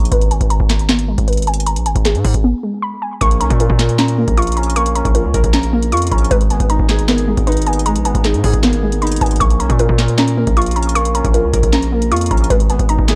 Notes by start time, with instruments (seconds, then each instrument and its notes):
Already playing: 808-style bass A#1, synth pluck A#3 C#4 A#4 A#5 C#6
0.05 closed hi-hat
0.11 808-style bass G#1, synth pluck B4, kick, closed hi-hat
0.21 closed hi-hat
0.31 synth pluck G#5, closed hi-hat
0.41 808-style bass G#1, kick, closed hi-hat
0.50 synth pluck A#5, closed hi-hat
0.60 808-style bass G#1, kick
0.70 snare, clap, closed hi-hat
0.79 closed hi-hat
0.89 synth pluck B3, snare, clap, closed hi-hat
0.99 closed hi-hat
1.08 synth pluck G#3
1.18 808-style bass G#1, kick, closed hi-hat
1.28 synth pluck B4, closed hi-hat
1.33 closed hi-hat
1.37 closed hi-hat
1.42 closed hi-hat
1.47 synth pluck G#5, closed hi-hat
1.54 closed hi-hat
1.60 closed hi-hat
1.66 synth pluck A#5, closed hi-hat
1.76 808-style bass A#1, closed hi-hat
1.86 808-style bass G#1, synth pluck G#5, closed hi-hat
1.95 808-style bass G#1, kick, closed hi-hat
2.05 synth pluck G#4, snare, clap, closed hi-hat
2.15 808-style bass G#2, closed hi-hat
2.25 808-style bass G#2, kick, open hi-hat
2.34 808-style bass G#1, kick, closed hi-hat
2.44 synth pluck B3
2.63 synth pluck G#3
2.82 synth pluck B5
3.02 synth pluck G#5
3.21 808-style bass A#1, felt piano A#3, synth pluck C#6, kick, closed hi-hat
3.31 closed hi-hat
3.40 808-style bass B1, felt piano C#4, synth pluck A#5, closed hi-hat
3.50 808-style bass A#2, kick, closed hi-hat
3.60 felt piano F4, synth pluck A#4, closed hi-hat
3.70 808-style bass A#2, kick
3.79 felt piano A#4, snare, clap, closed hi-hat
3.89 closed hi-hat
3.99 synth pluck C#4, felt piano A#5, snare, clap, closed hi-hat
4.08 closed hi-hat
4.18 synth pluck A#3, felt piano A#4
4.28 808-style bass A#1, kick, closed hi-hat
4.37 felt piano F4, synth pluck C#6, closed hi-hat
4.42 closed hi-hat
4.47 closed hi-hat
4.52 closed hi-hat
4.57 felt piano C#4, synth pluck A#5, closed hi-hat
4.63 closed hi-hat
4.70 closed hi-hat
4.76 felt piano A#3, synth pluck C#6, closed hi-hat
4.86 closed hi-hat
4.95 felt piano C#4, synth pluck A#5, closed hi-hat
5.05 808-style bass A#1, kick, closed hi-hat
5.15 felt piano F4, synth pluck A#4, closed hi-hat
5.24 808-style bass C#2
5.34 808-style bass A#1, felt piano A#4, kick, closed hi-hat
5.44 808-style bass A#1, kick, closed hi-hat
5.53 synth pluck C#4, felt piano A#5, snare, clap, closed hi-hat
5.63 closed hi-hat
5.73 synth pluck A#3, felt piano A#4
5.83 closed hi-hat
5.92 808-style bass F2, felt piano F4, synth pluck C#6, closed hi-hat
5.97 closed hi-hat
6.02 closed hi-hat
6.07 closed hi-hat
6.12 808-style bass A#1, felt piano C#4, synth pluck A#5, kick, closed hi-hat
6.18 closed hi-hat
6.24 closed hi-hat
6.31 808-style bass G#1, felt piano G#3, synth pluck B4, kick, closed hi-hat
6.41 closed hi-hat
6.50 felt piano B3, synth pluck G#5, closed hi-hat
6.60 808-style bass G#1, kick, closed hi-hat
6.70 felt piano D#4, synth pluck A#5, closed hi-hat
6.79 808-style bass G#1, kick
6.89 felt piano G#4, snare, clap, closed hi-hat
6.99 closed hi-hat
7.08 synth pluck B3, felt piano A#4, snare, clap, closed hi-hat
7.18 closed hi-hat
7.28 synth pluck G#3, felt piano G#4
7.37 808-style bass G#1, kick, closed hi-hat
7.47 felt piano D#4, synth pluck B4, closed hi-hat
7.52 closed hi-hat
7.57 closed hi-hat
7.62 closed hi-hat
7.66 felt piano B3, synth pluck G#5, closed hi-hat
7.73 closed hi-hat
7.79 closed hi-hat
7.86 felt piano G#3, synth pluck A#5, closed hi-hat
7.95 808-style bass A#1, closed hi-hat
8.05 808-style bass G#1, felt piano B3, synth pluck G#5, closed hi-hat
8.15 808-style bass G#1, kick, closed hi-hat
8.24 felt piano D#4, synth pluck G#4, snare, clap, closed hi-hat
8.34 808-style bass G#2, closed hi-hat
8.44 808-style bass G#2, felt piano G#4, kick, open hi-hat
8.53 808-style bass G#1, kick, closed hi-hat
8.63 felt piano A#3, synth pluck B3, snare, clap, closed hi-hat
8.73 closed hi-hat
8.83 synth pluck G#3, felt piano G#4
8.92 closed hi-hat
9.02 felt piano D#4, synth pluck B5, closed hi-hat
9.07 closed hi-hat
9.12 closed hi-hat
9.16 closed hi-hat
9.21 808-style bass G#1, felt piano B3, synth pluck G#5, kick, closed hi-hat
9.26 closed hi-hat
9.31 closed hi-hat
9.36 closed hi-hat
9.40 808-style bass A#1, felt piano A#3, synth pluck C#6, kick, closed hi-hat
9.50 closed hi-hat
9.60 808-style bass B1, felt piano C#4, synth pluck A#5, closed hi-hat
9.70 808-style bass A#2, kick, closed hi-hat
9.79 felt piano F4, synth pluck A#4, closed hi-hat
9.89 808-style bass A#2, kick
9.99 felt piano A#4, snare, clap, closed hi-hat
10.08 closed hi-hat
10.18 synth pluck C#4, felt piano A#5, snare, clap, closed hi-hat
10.28 closed hi-hat
10.37 synth pluck A#3, felt piano A#4
10.47 808-style bass A#1, kick, closed hi-hat
10.57 felt piano F4, synth pluck C#6, closed hi-hat
10.62 closed hi-hat
10.66 closed hi-hat
10.71 closed hi-hat
10.76 felt piano C#4, synth pluck A#5, closed hi-hat
10.83 closed hi-hat
10.89 closed hi-hat
10.95 felt piano A#3, synth pluck C#6, closed hi-hat
11.05 closed hi-hat
11.15 felt piano C#4, synth pluck A#5, closed hi-hat
11.24 808-style bass A#1, kick, closed hi-hat
11.34 felt piano F4, synth pluck A#4, closed hi-hat
11.44 808-style bass C#2
11.53 808-style bass A#1, felt piano A#4, kick, closed hi-hat
11.63 808-style bass A#1, kick, closed hi-hat
11.73 synth pluck C#4, felt piano A#5, snare, clap, closed hi-hat
11.82 closed hi-hat
11.92 synth pluck A#3, felt piano A#4
12.02 closed hi-hat
12.11 808-style bass F2, felt piano F4, synth pluck C#6, closed hi-hat
12.16 closed hi-hat
12.21 closed hi-hat
12.26 closed hi-hat
12.31 808-style bass A#1, felt piano C#4, synth pluck A#5, kick, closed hi-hat
12.37 closed hi-hat
12.44 closed hi-hat
12.50 808-style bass G#1, felt piano G#3, synth pluck B4, kick, closed hi-hat
12.60 closed hi-hat
12.70 felt piano B3, synth pluck G#5, closed hi-hat
12.79 808-style bass G#1, kick, closed hi-hat
12.89 felt piano D#4, synth pluck A#5, closed hi-hat
12.99 808-style bass G#1, kick
13.08 felt piano G#4, snare, clap, closed hi-hat